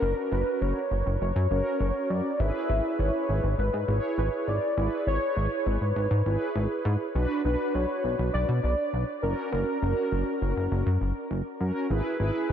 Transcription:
Already playing: C#4 F#4 A#4
0.02 F#1
0.32 F#1 B4
0.61 F#1 C#5
0.91 F#1
1.06 F#1
1.21 F#1 C#5
1.36 F#2
1.50 F#1 C#4 F#4 A#4
1.80 F#1
2.10 F#2 D5
2.40 G#1 E4 G#4 B4 E5
2.69 G#1
2.99 G#1 C#5
3.29 G#1
3.44 G#1
3.58 G#1 B4
3.73 G#2
3.88 G#1 E4 G#4 C#5
4.18 G#1 B4
4.47 G#1 D5
4.77 G#1 E4 G#4 B4
5.07 G#1 C#5
5.37 G#1
5.66 G#1 B4
5.81 G#1
5.96 G#1
6.11 G#2
6.26 G#1 E4 G#4 B4
6.55 G#1
6.85 G#2
7.15 B1 D4 F#4 B4
7.45 B1 D4 F#4 B4
7.74 B1 C#5
8.04 B1
8.19 B1
8.34 B1 D5
8.49 B2
8.63 B1 D5
8.93 B1
9.22 F#1 C#4 F#4 A#4
9.52 F#1 A#4
9.82 F#1 C#4 F#4 A#4
10.12 F#1
10.42 F#1
10.56 F#1
10.71 F#1
10.86 F#2
11.01 F#1
11.31 F#1
11.60 F#2 C#4 F#4 A#4
11.90 G#1 E4 G#4 B4
12.20 G#1 E4 G#4 B4
12.49 G#1

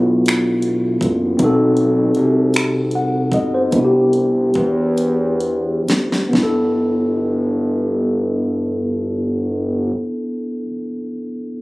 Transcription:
Already playing: B1 B3 D4 E4 F4 F#4
0.26 finger snap, closed hi-hat
0.62 closed hi-hat
1.01 F#1, kick, closed hi-hat
1.37 B1 C4 D#4, kick, closed hi-hat
1.42 F#4 A4
1.77 closed hi-hat
2.15 C2, closed hi-hat
2.54 finger snap, closed hi-hat
2.91 closed hi-hat
2.95 F#5
3.32 G1 D#5, kick, closed hi-hat
3.54 C5
3.71 C2 B3 D4, kick, closed hi-hat
3.76 E4 F#4
3.84 G4
4.13 closed hi-hat
4.54 E2, kick, closed hi-hat
4.98 closed hi-hat
5.41 closed hi-hat
5.88 D2, snare, closed hi-hat
6.12 snare
6.29 B3
6.33 G1 D4, kick, snare
6.38 E4
6.43 A4

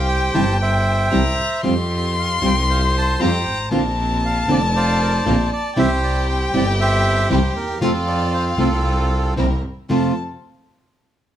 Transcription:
Already playing: C2 G4 C5 G5
0.08 G5
0.34 G1 C3 E3 G3 C4 E4 A5
0.61 C5 E5 G5
1.11 C2 C3 E3 G3 C4 E4 A#5
1.63 F2 F3 G3 C4 F4 G4 C6
2.19 F5
2.42 C2 F3 G3 C4 F4 G4 G5
2.70 C5 F5
2.98 A5
3.20 F2 F3 G3 C4 F4 G4 C5 G5 A#5
3.47 G#1
3.71 A#1 D3 A#3 C4 D4 F4 A#4 A5
4.25 F5
4.48 F1 D3 A#3 C4 D4 F4 A#4 D5
4.76 C5 D5 F5
5.02 A#4
5.25 A#1 D3 A#3 C4 D4 F4 A#4 C5
5.52 D5
5.76 C2 C3 E3 G3 C4 E4 G4 C5 E5 G5
6.04 D5
6.29 C5
6.53 G1 C3 E3 G3 C4 E4 G4 D5
6.81 G4 C5 E5
7.30 C2 C3 E3 G3 C4 E4 G4 C5
7.56 D#2 A#4
7.81 F2 C3 F3 A3 C4 F4 A4 F5
8.07 D5
8.33 C5
8.58 C2 C3 F3 A3 C4 F4 A4
9.36 C2 C3 E3 A#3 C4 E4 A#4
9.89 F2 C3 F3 A3 C4 F4 A4 A5

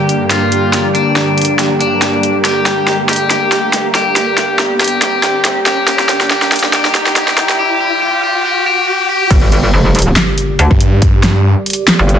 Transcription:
Already playing: G2 D3 A#3 G4 D5 G5 A#5, riser
0.09 closed hi-hat
0.30 F4, snare, closed hi-hat
0.52 closed hi-hat
0.73 snare, closed hi-hat
0.95 D4, closed hi-hat
1.16 snare
1.38 closed hi-hat
1.42 closed hi-hat
1.45 closed hi-hat
1.59 snare, closed hi-hat
1.80 D4, closed hi-hat
2.02 snare, closed hi-hat
2.23 closed hi-hat
2.45 G4, snare, closed hi-hat
2.66 snare, closed hi-hat
2.88 snare
3.09 G4, snare, closed hi-hat
3.13 closed hi-hat
3.16 closed hi-hat
3.30 G4, snare, closed hi-hat
3.52 snare, closed hi-hat
3.73 snare, closed hi-hat
3.95 G4, snare, closed hi-hat
4.16 G4, snare, closed hi-hat
4.38 snare, closed hi-hat
4.59 snare
4.80 G4, snare, closed hi-hat
4.84 closed hi-hat
4.88 closed hi-hat
5.02 G4, snare, closed hi-hat
5.23 snare, closed hi-hat
5.45 snare, closed hi-hat
5.66 G4, snare, closed hi-hat
5.88 G4, snare, closed hi-hat
5.99 snare
6.09 snare, closed hi-hat
6.21 snare
6.30 G4, snare
6.42 snare
6.52 snare, closed hi-hat
6.56 closed hi-hat
6.59 closed hi-hat
6.64 snare
6.73 G4, snare, closed hi-hat
6.85 snare
6.95 snare, closed hi-hat
7.06 snare
7.16 G4, snare, closed hi-hat
7.28 snare
7.38 snare, closed hi-hat
7.49 snare
7.59 G4
7.80 G4
8.02 G4
8.23 G4
8.45 G4
8.66 G4
8.88 G4
9.09 G4
9.30 G1 G3 G4 A#4 D5, kick, closed hi-hat, crash, impact
9.52 closed hi-hat
9.73 F1
9.95 closed hi-hat
9.99 closed hi-hat
10.02 closed hi-hat
10.16 snare, clap, closed hi-hat
10.38 closed hi-hat
10.59 D2, closed hi-hat
10.71 G2, kick
10.80 closed hi-hat
11.02 kick, closed hi-hat
11.23 snare, closed hi-hat
11.66 closed hi-hat
11.70 closed hi-hat
11.73 closed hi-hat
11.88 snare, clap, closed hi-hat
11.99 G1
12.09 closed hi-hat

